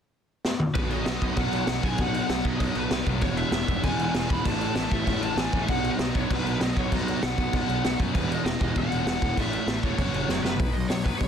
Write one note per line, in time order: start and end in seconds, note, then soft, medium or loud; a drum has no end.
0.45 snare medium
0.60 mid tom medium
0.75 0.95 B1 medium
0.75 1.05 B2 medium
0.75 1.06 F#3 medium
0.75 1.07 B3 loud
0.75 0.91 B4 medium
0.75 kick loud
0.75 crash medium
0.90 1.04 D#5 medium
0.90 crash medium
1.06 1.16 B1 medium
1.06 1.21 B2 medium
1.06 1.21 F#3 medium
1.06 1.21 B3 medium
1.06 1.21 D#5 medium
1.06 snare loud
1.06 crash medium
1.21 1.32 B1 medium
1.21 1.36 B2 medium
1.21 1.37 F#3 medium
1.21 1.38 B3 medium
1.21 1.38 D#5 medium
1.21 kick medium
1.21 crash medium
1.37 1.47 B1 loud
1.37 1.67 B2 medium
1.37 1.67 F#3 loud
1.37 1.69 B3 loud
1.37 1.67 F#5 medium
1.37 kick medium
1.37 crash medium
1.52 1.62 B1 medium
1.52 crash medium
1.67 1.77 B1 medium
1.67 1.83 B2 medium
1.67 1.83 F#3 medium
1.67 1.83 B3 loud
1.67 1.84 F#5 medium
1.67 snare loud
1.67 crash medium
1.83 1.93 B1 medium
1.83 1.98 B2 medium
1.83 1.98 F#3 medium
1.83 2.00 B3 medium
1.83 2.01 G#5 medium
1.83 kick medium
1.83 crash medium
1.98 2.19 B1 medium
1.98 2.28 B2 medium
1.98 2.29 F#3 loud
1.98 2.30 B3 loud
1.98 2.21 F#5 medium
1.98 kick loud
1.98 crash medium
2.14 crash medium
2.22 2.46 F#5 loud
2.29 2.39 B1 medium
2.29 2.45 B2 medium
2.29 2.44 F#3 medium
2.29 2.44 B3 loud
2.29 snare loud
2.29 crash medium
2.45 2.55 B1 medium
2.45 2.58 B2 medium
2.45 2.59 F#3 medium
2.45 2.60 B3 medium
2.45 2.60 D#5 medium
2.45 kick medium
2.45 crash medium
2.59 2.70 B1 loud
2.59 2.90 B2 loud
2.59 2.90 F#3 loud
2.59 2.91 B3 loud
2.59 2.77 D#5 loud
2.59 kick medium
2.59 crash medium
2.75 2.85 B1 medium
2.75 3.05 B4 loud
2.75 crash medium
2.91 3.01 B1 medium
2.91 3.07 B2 medium
2.91 3.06 F#3 medium
2.91 3.05 B3 medium
2.91 snare loud
2.91 crash medium
3.06 3.22 B1 medium
3.06 3.21 B2 medium
3.06 3.21 F#3 medium
3.06 3.21 B3 loud
3.06 kick medium
3.06 crash medium
3.21 3.42 E1 loud
3.21 3.51 E2 medium
3.21 3.52 B2 loud
3.21 3.53 E3 loud
3.21 3.38 C#5 medium
3.21 kick loud
3.21 crash medium
3.37 3.52 E5 loud
3.37 crash medium
3.52 3.62 E1 medium
3.52 3.68 E2 medium
3.52 3.67 B2 medium
3.52 3.66 E3 medium
3.52 3.67 E5 medium
3.52 snare loud
3.52 crash medium
3.68 3.78 E1 medium
3.68 3.81 E2 medium
3.68 3.82 B2 medium
3.68 3.82 E3 medium
3.68 3.83 E5 loud
3.68 kick medium
3.68 crash medium
3.82 3.94 E1 medium
3.82 4.12 E2 loud
3.82 4.13 B2 loud
3.82 4.13 E3 loud
3.82 4.12 G#5 loud
3.82 kick medium
3.82 crash medium
3.98 4.09 E1 medium
3.98 crash medium
4.13 4.25 E1 medium
4.13 4.29 E2 medium
4.13 4.28 B2 loud
4.13 4.27 E3 medium
4.13 4.30 G#5 medium
4.13 snare loud
4.13 crash medium
4.29 4.40 E1 medium
4.29 4.44 E2 medium
4.29 4.43 B2 medium
4.29 4.43 E3 medium
4.29 4.45 B5 loud
4.29 kick medium
4.29 crash medium
4.44 4.65 A1 medium
4.44 4.73 A2 medium
4.44 4.74 E3 loud
4.44 4.74 A3 loud
4.44 4.67 A5 loud
4.44 kick loud
4.44 crash medium
4.61 crash medium
4.68 4.90 A5 loud
4.74 4.86 A1 medium
4.74 4.90 A2 medium
4.74 4.90 E3 medium
4.74 4.89 A3 medium
4.74 snare loud
4.74 crash medium
4.90 5.01 A1 medium
4.90 5.04 A2 medium
4.90 5.05 E3 medium
4.90 5.06 A3 medium
4.90 5.05 E5 medium
4.90 kick medium
4.90 crash medium
5.05 5.17 A1 medium
5.05 5.35 A2 medium
5.05 5.36 E3 medium
5.05 5.37 A3 loud
5.05 5.22 E5 loud
5.05 kick loud
5.05 crash medium
5.21 5.31 A1 medium
5.21 5.37 A5 loud
5.21 crash medium
5.36 5.47 A1 medium
5.36 5.53 A2 medium
5.36 5.52 E3 medium
5.36 5.51 A3 medium
5.36 5.63 G#5 medium
5.36 snare loud
5.36 crash medium
5.52 5.63 A#1 medium
5.52 5.67 A2 medium
5.52 5.68 E3 medium
5.52 5.67 A3 medium
5.52 kick medium
5.52 crash medium
5.62 5.68 E5 medium
5.68 5.88 B1 loud
5.68 5.99 B2 medium
5.68 5.99 F#3 loud
5.68 6.00 B3 loud
5.68 5.91 F#5 medium
5.68 kick medium
5.68 crash medium
5.84 crash medium
5.91 6.15 D#5 loud
5.99 6.09 B1 medium
5.99 6.14 B2 medium
5.99 6.13 F#3 medium
5.99 6.13 B3 loud
5.99 snare loud
5.99 crash medium
6.14 6.25 B1 medium
6.14 6.29 B2 medium
6.14 6.29 F#3 medium
6.14 6.30 B3 medium
6.14 6.31 C#5 medium
6.14 kick medium
6.14 crash medium
6.30 6.40 B1 loud
6.30 6.60 B2 medium
6.30 6.61 F#3 loud
6.30 6.62 B3 loud
6.30 6.45 B4 medium
6.30 kick loud
6.30 crash medium
6.45 6.55 B1 medium
6.45 6.60 B4 medium
6.45 crash medium
6.60 6.70 B1 medium
6.60 6.76 B2 medium
6.60 6.75 F#3 medium
6.60 6.75 B3 medium
6.60 6.77 D#5 medium
6.60 snare loud
6.60 crash medium
6.75 6.87 B1 medium
6.75 6.89 B2 medium
6.75 6.90 F#3 medium
6.75 6.91 B3 medium
6.75 6.93 C#5 medium
6.75 kick medium
6.75 crash medium
6.91 7.12 B1 loud
6.91 7.20 B2 medium
6.91 7.21 F#3 loud
6.91 7.23 B3 loud
6.91 7.23 D#5 medium
6.91 kick loud
6.91 crash medium
7.08 crash medium
7.21 7.33 B1 medium
7.21 7.37 B2 medium
7.21 7.37 F#3 medium
7.21 7.36 B3 loud
7.21 7.53 F#5 medium
7.21 snare loud
7.21 crash medium
7.37 7.48 B1 medium
7.37 7.51 B2 medium
7.37 7.52 F#3 medium
7.37 7.53 B3 medium
7.37 kick medium
7.37 crash medium
7.52 7.63 B1 loud
7.52 7.82 B2 medium
7.52 7.82 F#3 loud
7.52 7.83 B3 loud
7.52 7.97 F#5 medium
7.52 kick medium
7.52 crash medium
7.69 7.79 B1 medium
7.69 crash medium
7.83 7.94 B1 medium
7.83 7.99 B2 medium
7.83 7.98 F#3 medium
7.83 7.97 B3 loud
7.83 snare loud
7.83 crash medium
7.98 8.09 F#2 medium
7.98 8.13 B2 medium
7.98 8.14 F#3 medium
7.98 8.13 B3 medium
7.98 kick medium
7.98 crash medium
8.13 8.34 E1 medium
8.13 8.44 E2 medium
8.13 8.44 B2 loud
8.13 8.46 E3 loud
8.13 8.30 B4 medium
8.13 kick loud
8.13 crash medium
8.31 8.45 D#5 medium
8.31 crash medium
8.45 8.55 E1 medium
8.45 8.60 E2 medium
8.45 8.59 B2 medium
8.45 8.58 E3 medium
8.45 8.60 D#5 medium
8.45 snare loud
8.45 crash medium
8.59 8.71 E1 medium
8.59 8.73 E2 medium
8.59 8.75 B2 medium
8.59 8.75 E3 medium
8.59 8.78 D#5 medium
8.59 kick medium
8.59 crash medium
8.75 8.86 E1 loud
8.75 9.05 E2 medium
8.75 9.05 B2 loud
8.75 9.06 E3 loud
8.75 9.07 F#5 medium
8.75 kick loud
8.75 crash medium
8.91 9.01 E1 medium
8.91 crash medium
9.06 9.16 E1 medium
9.06 9.22 E2 medium
9.06 9.21 B2 medium
9.06 9.20 E3 medium
9.06 9.39 F#5 medium
9.06 snare loud
9.06 crash medium
9.22 9.32 E1 medium
9.22 9.37 E2 medium
9.22 9.36 B2 medium
9.22 9.36 E3 medium
9.22 kick medium
9.22 crash medium
9.37 9.57 A1 medium
9.37 9.66 A2 medium
9.37 9.67 E3 loud
9.37 9.67 A3 loud
9.37 9.85 E5 medium
9.37 kick loud
9.37 crash medium
9.53 crash medium
9.67 9.77 A1 medium
9.67 9.83 A2 medium
9.67 9.82 E3 medium
9.67 9.81 A3 medium
9.67 snare loud
9.67 crash medium
9.83 9.93 E1 medium
9.83 9.98 A2 medium
9.83 9.97 E3 medium
9.83 9.97 A3 medium
9.83 9.98 C#5 medium
9.83 kick medium
9.83 crash medium
9.98 10.08 F#1 loud
9.98 10.27 F#2 medium
9.98 10.28 C#3 loud
9.98 10.29 F#3 loud
9.98 10.41 C#5 medium
9.98 kick loud
9.98 crash medium
10.13 10.23 F#1 medium
10.13 crash medium
10.28 10.39 F#1 medium
10.28 10.44 F#2 medium
10.28 10.43 C#3 medium
10.28 10.43 F#3 medium
10.28 snare medium
10.43 10.60 F#1 medium
10.43 10.59 F#2 medium
10.43 10.58 C#3 medium
10.43 10.58 F#3 medium
10.43 10.72 B4 medium
10.43 snare medium
10.59 10.69 B1 medium
10.59 10.73 B2 medium
10.59 10.74 F#3 medium
10.59 10.74 B3 medium
10.59 kick loud
10.59 open hi-hat medium
10.73 10.84 B1 medium
10.73 10.88 B2 medium
10.73 10.88 F#3 medium
10.73 10.89 D#5 medium
10.88 11.09 B1 medium
10.88 11.03 B2 medium
10.88 11.03 F#3 medium
10.88 11.04 C#5 medium
10.88 snare loud
10.88 open hi-hat medium
11.04 11.18 B2 medium
11.04 11.18 F#3 medium
11.04 11.19 B3 medium
11.04 11.18 B4 medium
11.04 kick medium
11.19 11.28 B1 medium
11.19 11.28 B2 medium
11.19 11.28 F#3 medium
11.19 11.28 C#5 medium
11.19 kick medium
11.19 open hi-hat medium